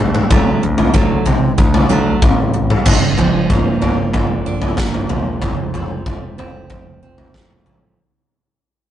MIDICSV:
0, 0, Header, 1, 4, 480
1, 0, Start_track
1, 0, Key_signature, -2, "minor"
1, 0, Tempo, 639659
1, 233, Time_signature, 4, 2, 24, 8
1, 6681, End_track
2, 0, Start_track
2, 0, Title_t, "Steel-string acoustic guitar"
2, 0, Program_c, 0, 25
2, 0, Note_on_c, 0, 50, 65
2, 0, Note_on_c, 0, 54, 75
2, 208, Note_off_c, 0, 50, 0
2, 209, Note_off_c, 0, 54, 0
2, 228, Note_on_c, 0, 50, 87
2, 229, Note_on_c, 0, 54, 85
2, 231, Note_on_c, 0, 57, 99
2, 456, Note_off_c, 0, 50, 0
2, 456, Note_off_c, 0, 54, 0
2, 457, Note_off_c, 0, 57, 0
2, 472, Note_on_c, 0, 50, 68
2, 474, Note_on_c, 0, 54, 77
2, 688, Note_off_c, 0, 50, 0
2, 689, Note_off_c, 0, 54, 0
2, 702, Note_on_c, 0, 50, 84
2, 704, Note_on_c, 0, 54, 86
2, 709, Note_on_c, 0, 57, 82
2, 932, Note_off_c, 0, 50, 0
2, 934, Note_off_c, 0, 54, 0
2, 936, Note_off_c, 0, 57, 0
2, 940, Note_on_c, 0, 50, 60
2, 946, Note_on_c, 0, 54, 81
2, 1162, Note_off_c, 0, 50, 0
2, 1165, Note_off_c, 0, 54, 0
2, 1183, Note_on_c, 0, 50, 67
2, 1185, Note_on_c, 0, 54, 77
2, 1403, Note_off_c, 0, 50, 0
2, 1404, Note_off_c, 0, 54, 0
2, 1420, Note_on_c, 0, 50, 83
2, 1423, Note_on_c, 0, 54, 97
2, 1428, Note_on_c, 0, 57, 99
2, 1651, Note_off_c, 0, 50, 0
2, 1652, Note_off_c, 0, 54, 0
2, 1655, Note_off_c, 0, 57, 0
2, 1665, Note_on_c, 0, 50, 67
2, 1669, Note_on_c, 0, 54, 82
2, 1884, Note_off_c, 0, 50, 0
2, 1886, Note_off_c, 0, 54, 0
2, 1902, Note_on_c, 0, 50, 66
2, 1905, Note_on_c, 0, 54, 77
2, 2122, Note_off_c, 0, 50, 0
2, 2124, Note_off_c, 0, 54, 0
2, 2142, Note_on_c, 0, 43, 71
2, 2389, Note_on_c, 0, 53, 66
2, 2630, Note_on_c, 0, 58, 67
2, 2863, Note_on_c, 0, 62, 69
2, 3104, Note_off_c, 0, 53, 0
2, 3107, Note_on_c, 0, 53, 67
2, 3338, Note_off_c, 0, 62, 0
2, 3346, Note_off_c, 0, 43, 0
2, 3347, Note_on_c, 0, 62, 72
2, 3576, Note_off_c, 0, 58, 0
2, 3585, Note_on_c, 0, 58, 68
2, 3818, Note_off_c, 0, 53, 0
2, 3821, Note_on_c, 0, 53, 60
2, 4067, Note_off_c, 0, 58, 0
2, 4068, Note_off_c, 0, 62, 0
2, 4071, Note_on_c, 0, 41, 69
2, 4310, Note_off_c, 0, 53, 0
2, 4313, Note_on_c, 0, 53, 63
2, 4551, Note_on_c, 0, 57, 58
2, 4789, Note_on_c, 0, 60, 67
2, 5016, Note_off_c, 0, 53, 0
2, 5025, Note_on_c, 0, 53, 69
2, 5263, Note_off_c, 0, 60, 0
2, 5271, Note_off_c, 0, 41, 0
2, 5272, Note_on_c, 0, 60, 62
2, 5503, Note_off_c, 0, 57, 0
2, 5512, Note_on_c, 0, 57, 59
2, 5743, Note_off_c, 0, 53, 0
2, 5752, Note_on_c, 0, 53, 63
2, 5992, Note_off_c, 0, 53, 0
2, 5992, Note_off_c, 0, 57, 0
2, 5992, Note_off_c, 0, 60, 0
2, 6681, End_track
3, 0, Start_track
3, 0, Title_t, "Picked electric bass"
3, 0, Program_c, 1, 34
3, 0, Note_on_c, 1, 38, 84
3, 169, Note_off_c, 1, 38, 0
3, 228, Note_on_c, 1, 38, 87
3, 409, Note_off_c, 1, 38, 0
3, 470, Note_on_c, 1, 38, 85
3, 650, Note_off_c, 1, 38, 0
3, 705, Note_on_c, 1, 38, 85
3, 887, Note_off_c, 1, 38, 0
3, 955, Note_on_c, 1, 48, 84
3, 1133, Note_off_c, 1, 48, 0
3, 1185, Note_on_c, 1, 38, 87
3, 1367, Note_off_c, 1, 38, 0
3, 1430, Note_on_c, 1, 38, 76
3, 1610, Note_off_c, 1, 38, 0
3, 1670, Note_on_c, 1, 33, 79
3, 2030, Note_off_c, 1, 33, 0
3, 2145, Note_on_c, 1, 31, 85
3, 2376, Note_off_c, 1, 31, 0
3, 2387, Note_on_c, 1, 31, 84
3, 2616, Note_off_c, 1, 31, 0
3, 2624, Note_on_c, 1, 31, 84
3, 2855, Note_off_c, 1, 31, 0
3, 2861, Note_on_c, 1, 31, 74
3, 3093, Note_off_c, 1, 31, 0
3, 3110, Note_on_c, 1, 31, 90
3, 3338, Note_off_c, 1, 31, 0
3, 3345, Note_on_c, 1, 31, 75
3, 3575, Note_off_c, 1, 31, 0
3, 3586, Note_on_c, 1, 31, 82
3, 3812, Note_off_c, 1, 31, 0
3, 3817, Note_on_c, 1, 28, 76
3, 4051, Note_off_c, 1, 28, 0
3, 4070, Note_on_c, 1, 29, 86
3, 4298, Note_off_c, 1, 29, 0
3, 4306, Note_on_c, 1, 29, 84
3, 4536, Note_off_c, 1, 29, 0
3, 4549, Note_on_c, 1, 29, 82
3, 4778, Note_off_c, 1, 29, 0
3, 4789, Note_on_c, 1, 29, 79
3, 5018, Note_off_c, 1, 29, 0
3, 5030, Note_on_c, 1, 29, 77
3, 5258, Note_off_c, 1, 29, 0
3, 5272, Note_on_c, 1, 29, 80
3, 5500, Note_off_c, 1, 29, 0
3, 5511, Note_on_c, 1, 29, 80
3, 5739, Note_off_c, 1, 29, 0
3, 5744, Note_on_c, 1, 33, 74
3, 5976, Note_off_c, 1, 33, 0
3, 6681, End_track
4, 0, Start_track
4, 0, Title_t, "Drums"
4, 109, Note_on_c, 9, 47, 78
4, 184, Note_off_c, 9, 47, 0
4, 230, Note_on_c, 9, 36, 113
4, 232, Note_on_c, 9, 43, 90
4, 305, Note_off_c, 9, 36, 0
4, 307, Note_off_c, 9, 43, 0
4, 585, Note_on_c, 9, 43, 85
4, 660, Note_off_c, 9, 43, 0
4, 708, Note_on_c, 9, 36, 106
4, 783, Note_off_c, 9, 36, 0
4, 944, Note_on_c, 9, 43, 78
4, 1019, Note_off_c, 9, 43, 0
4, 1188, Note_on_c, 9, 36, 110
4, 1263, Note_off_c, 9, 36, 0
4, 1307, Note_on_c, 9, 43, 83
4, 1382, Note_off_c, 9, 43, 0
4, 1667, Note_on_c, 9, 36, 116
4, 1669, Note_on_c, 9, 43, 89
4, 1742, Note_off_c, 9, 36, 0
4, 1744, Note_off_c, 9, 43, 0
4, 2028, Note_on_c, 9, 47, 78
4, 2103, Note_off_c, 9, 47, 0
4, 2144, Note_on_c, 9, 43, 87
4, 2144, Note_on_c, 9, 49, 98
4, 2147, Note_on_c, 9, 36, 104
4, 2219, Note_off_c, 9, 43, 0
4, 2219, Note_off_c, 9, 49, 0
4, 2222, Note_off_c, 9, 36, 0
4, 2384, Note_on_c, 9, 43, 69
4, 2459, Note_off_c, 9, 43, 0
4, 2625, Note_on_c, 9, 43, 77
4, 2627, Note_on_c, 9, 36, 104
4, 2701, Note_off_c, 9, 43, 0
4, 2702, Note_off_c, 9, 36, 0
4, 2869, Note_on_c, 9, 43, 78
4, 2944, Note_off_c, 9, 43, 0
4, 3103, Note_on_c, 9, 43, 80
4, 3107, Note_on_c, 9, 36, 96
4, 3178, Note_off_c, 9, 43, 0
4, 3182, Note_off_c, 9, 36, 0
4, 3464, Note_on_c, 9, 43, 77
4, 3539, Note_off_c, 9, 43, 0
4, 3580, Note_on_c, 9, 47, 78
4, 3585, Note_on_c, 9, 38, 76
4, 3587, Note_on_c, 9, 36, 108
4, 3655, Note_off_c, 9, 47, 0
4, 3660, Note_off_c, 9, 38, 0
4, 3662, Note_off_c, 9, 36, 0
4, 3708, Note_on_c, 9, 43, 70
4, 3783, Note_off_c, 9, 43, 0
4, 3825, Note_on_c, 9, 43, 85
4, 3900, Note_off_c, 9, 43, 0
4, 4064, Note_on_c, 9, 43, 80
4, 4068, Note_on_c, 9, 36, 104
4, 4139, Note_off_c, 9, 43, 0
4, 4143, Note_off_c, 9, 36, 0
4, 4307, Note_on_c, 9, 43, 69
4, 4382, Note_off_c, 9, 43, 0
4, 4549, Note_on_c, 9, 36, 98
4, 4549, Note_on_c, 9, 43, 84
4, 4624, Note_off_c, 9, 36, 0
4, 4624, Note_off_c, 9, 43, 0
4, 4795, Note_on_c, 9, 43, 83
4, 4870, Note_off_c, 9, 43, 0
4, 5026, Note_on_c, 9, 43, 74
4, 5030, Note_on_c, 9, 36, 100
4, 5101, Note_off_c, 9, 43, 0
4, 5105, Note_off_c, 9, 36, 0
4, 5388, Note_on_c, 9, 43, 81
4, 5463, Note_off_c, 9, 43, 0
4, 5510, Note_on_c, 9, 36, 103
4, 5510, Note_on_c, 9, 47, 75
4, 5515, Note_on_c, 9, 38, 72
4, 5585, Note_off_c, 9, 36, 0
4, 5585, Note_off_c, 9, 47, 0
4, 5590, Note_off_c, 9, 38, 0
4, 5631, Note_on_c, 9, 43, 66
4, 5706, Note_off_c, 9, 43, 0
4, 5748, Note_on_c, 9, 43, 74
4, 5823, Note_off_c, 9, 43, 0
4, 6681, End_track
0, 0, End_of_file